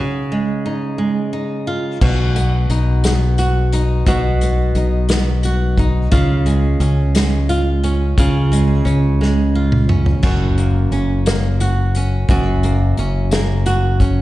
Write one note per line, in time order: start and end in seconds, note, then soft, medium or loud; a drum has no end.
0.00 2.01 C#3 medium
0.00 0.65 D#4 medium
0.32 0.97 G#3 medium
0.66 1.33 D#4 medium
0.98 2.08 G#3 medium
1.33 2.70 D#4 medium
1.67 2.01 F4 medium
2.01 2.66 B1 medium
2.01 4.06 B2 medium
2.01 3.37 F#4 medium
2.01 kick loud
2.01 crash medium
2.36 3.04 B3 medium
2.36 closed hi-hat soft
2.69 4.03 B1 medium
2.69 3.72 D#4 medium
2.69 closed hi-hat soft
3.04 4.42 B3 medium
3.04 snare loud
3.04 closed hi-hat medium
3.38 4.07 F#4 medium
3.38 closed hi-hat medium
3.72 4.76 D#4 medium
3.72 closed hi-hat medium
4.06 4.72 B1 medium
4.06 6.11 B2 medium
4.06 5.44 F#4 medium
4.06 kick loud
4.06 closed hi-hat medium
4.41 5.08 B3 medium
4.41 closed hi-hat soft
4.75 6.08 B1 loud
4.75 5.78 D#4 medium
4.75 closed hi-hat soft
5.09 6.19 B3 medium
5.09 snare loud
5.09 closed hi-hat medium
5.43 6.12 F#4 medium
5.43 closed hi-hat medium
5.77 6.20 D#4 medium
5.77 kick medium
5.77 closed hi-hat soft
6.12 6.77 C#2 medium
6.12 8.17 C#3 medium
6.12 7.48 F4 medium
6.12 kick loud
6.12 closed hi-hat medium
6.46 7.14 G#3 medium
6.46 closed hi-hat soft
6.80 8.14 C#2 loud
6.80 7.83 C#4 medium
6.80 closed hi-hat soft
7.15 8.50 G#3 medium
7.15 snare loud
7.15 closed hi-hat medium
7.49 8.17 F4 medium
7.49 closed hi-hat medium
7.84 8.85 C#4 medium
7.84 closed hi-hat soft
8.18 8.82 C#2 medium
8.18 10.24 C#3 medium
8.18 9.54 F4 medium
8.18 kick loud
8.18 closed hi-hat medium
8.52 9.20 G#3 medium
8.52 closed hi-hat soft
8.85 10.19 C#2 medium
8.85 9.89 C#4 medium
8.85 closed hi-hat soft
9.21 10.30 G#3 medium
9.21 snare medium
9.55 10.23 F4 medium
9.72 mid tom medium
9.89 10.92 C#4 medium
9.89 mid tom medium
10.06 floor tom medium
10.23 10.88 F#1 loud
10.23 12.29 F#2 medium
10.23 11.60 F#4 medium
10.23 kick loud
10.23 splash medium
10.58 11.25 A#3 medium
10.58 closed hi-hat soft
10.91 12.24 F#1 medium
10.91 11.95 C#4 medium
10.91 closed hi-hat soft
11.26 12.63 A#3 medium
11.26 snare loud
11.26 closed hi-hat medium
11.60 12.29 F#4 medium
11.60 closed hi-hat medium
11.95 12.98 C#4 medium
11.95 closed hi-hat soft
12.29 12.93 F#1 medium
12.29 14.22 F#2 medium
12.29 13.65 F#4 medium
12.29 kick loud
12.29 closed hi-hat medium
12.63 13.31 A#3 medium
12.63 closed hi-hat soft
12.97 14.22 F#1 loud
12.97 13.99 C#4 medium
12.97 closed hi-hat soft
13.31 14.22 A#3 medium
13.31 snare loud
13.31 closed hi-hat medium
13.66 14.22 F#4 medium
13.66 closed hi-hat medium
14.00 14.22 C#4 medium
14.00 kick medium
14.00 closed hi-hat soft